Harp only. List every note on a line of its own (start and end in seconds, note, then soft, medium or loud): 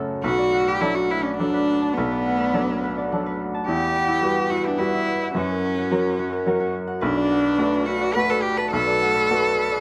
0.00 2.77 F#4 medium
0.00 3.69 A4 soft
0.00 0.26 C#5 soft
0.00 0.52 F#5 soft
0.24 0.66 B4 medium
0.38 0.80 D5 soft
0.53 1.39 F#5 medium
0.67 1.10 B4 medium
0.81 1.24 D5 soft
1.11 1.52 B4 medium
1.25 2.10 D5 soft
1.40 2.25 F#5 soft
1.53 1.96 B4 medium
1.82 3.53 A5 medium
1.97 2.39 B4 medium
2.12 2.53 D5 soft
2.26 3.11 F#5 soft
2.40 2.82 B4 medium
2.54 2.96 D5 soft
2.83 3.25 B4 medium
2.98 3.70 D5 soft
3.12 6.86 F#5 soft
3.26 3.94 B4 medium
3.54 3.70 A5 soft
3.68 4.07 E4 medium
3.82 4.22 G4 medium
3.95 4.79 B4 soft
4.08 4.50 E4 medium
4.23 4.64 G4 soft
4.51 4.93 E4 medium
4.66 5.37 G4 soft
4.80 5.38 B4 soft
4.94 5.37 E4 medium
5.23 5.38 E5 soft
5.36 5.77 F#4 medium
5.51 5.91 A#4 soft
5.65 6.45 C#5 medium
5.78 6.18 F#4 medium
5.92 6.31 A#4 medium
6.19 6.59 F#4 medium
6.32 7.04 A#4 medium
6.46 7.04 C#5 medium
6.60 9.80 F#4 medium
6.87 7.30 F#5 medium
7.01 7.42 B4 medium
7.16 7.58 D5 medium
7.31 8.15 F#5 medium
7.44 7.86 B4 medium
7.59 8.00 D5 medium
7.87 8.28 B4 medium
8.01 8.86 D5 medium
8.16 9.00 F#5 medium
8.29 8.72 B4 medium
8.58 9.80 A5 medium
8.73 9.14 B4 medium
8.87 9.29 D5 medium
9.01 9.80 F#5 medium
9.15 9.57 B4 medium
9.30 9.70 D5 medium
9.58 9.80 B4 medium
9.71 9.80 D5 medium